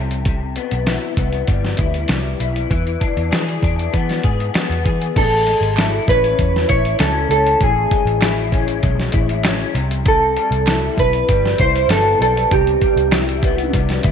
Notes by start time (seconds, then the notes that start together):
Already playing: C2 C3 E4
0.11 closed hi-hat
0.25 C3, kick, closed hi-hat
0.56 B3, closed hi-hat
0.71 B1, closed hi-hat
0.86 E4, snare, closed hi-hat
1.17 C2 B3, kick, closed hi-hat
1.33 closed hi-hat
1.48 G1 G3, kick, closed hi-hat
1.65 snare
1.77 D2 E4, kick, closed hi-hat
1.94 closed hi-hat
2.08 C2 G3, snare, closed hi-hat
2.40 B1 E4, closed hi-hat
2.56 closed hi-hat
2.70 E2 E3, kick, closed hi-hat
2.87 closed hi-hat
3.00 D4, kick, closed hi-hat
3.17 E2, closed hi-hat
3.31 E3 G#4, snare, closed hi-hat
3.49 closed hi-hat
3.62 E2 D4, kick, closed hi-hat
3.79 closed hi-hat
3.93 E3 B3, kick, closed hi-hat
4.09 snare, closed hi-hat
4.24 G#2 G#4, kick, closed hi-hat
4.40 closed hi-hat
4.54 B3, muted picked electric bass stroke, snare, closed hi-hat
4.70 E2, closed hi-hat
4.84 E3 G#4, kick, closed hi-hat
5.02 closed hi-hat
5.16 A1 A4, kick, closed hi-hat, crash
5.47 G#3, closed hi-hat
5.61 G#1, closed hi-hat
5.77 E4, snare, clap, closed hi-hat
6.08 A1 C#4 B4, kick, closed hi-hat
6.24 closed hi-hat
6.39 E2, kick, closed hi-hat
6.56 snare
6.68 A1 E4 C#5, kick, closed hi-hat
6.85 closed hi-hat
6.99 C#2 C#4 A4, snare, clap, closed hi-hat
7.29 C#2 A4, closed hi-hat
7.47 closed hi-hat
7.60 A1 A2 G#4, kick, closed hi-hat
7.91 G#3, kick, closed hi-hat
8.05 A1, closed hi-hat
8.21 E4, snare, clap, closed hi-hat
8.52 C#4, kick, closed hi-hat
8.68 closed hi-hat
8.83 B1 G#3, kick, closed hi-hat
9.00 snare
9.12 A1 E4, kick, closed hi-hat
9.29 closed hi-hat
9.43 C#4, snare, clap, closed hi-hat
9.74 C2 C3, closed hi-hat
9.91 closed hi-hat
10.05 C3 A4, kick, closed hi-hat
10.37 G3, closed hi-hat
10.51 C2, closed hi-hat
10.66 E4, snare, clap, closed hi-hat
10.97 B1 B4, kick, closed hi-hat
11.13 closed hi-hat
11.29 G1 G3, kick, closed hi-hat
11.46 snare
11.58 C2 E4 C5, kick, closed hi-hat
11.76 closed hi-hat
11.88 G1 B3 A4, snare, clap, closed hi-hat
12.20 B1 G3 A4, closed hi-hat
12.37 closed hi-hat
12.51 C2 C3 G4, kick, closed hi-hat
12.67 closed hi-hat
12.81 G3, kick, closed hi-hat
12.96 C2, closed hi-hat
13.12 E4, snare, clap, closed hi-hat
13.29 closed hi-hat
13.42 B3, kick, closed hi-hat
13.58 closed hi-hat
13.73 C2 G3, kick, closed hi-hat
13.89 snare, closed hi-hat
14.03 D2 E4, kick, closed hi-hat